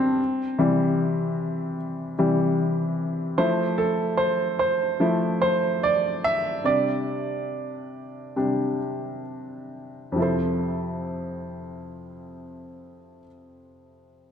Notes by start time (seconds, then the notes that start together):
Already playing: G2 F3 B3 C4 D4
0.58 C3 E3 G3
2.18 C3 E3 G3
3.38 F3 A3 E4 C5
3.78 A4
4.17 C5
4.59 C5
5.00 F3 A3 E4
5.42 C5
5.83 D5
6.24 E5
6.64 C3 G3 D4 D5
8.36 C3 G3 D4
10.12 F2 C3
10.16 F3 E4
10.20 A4 C5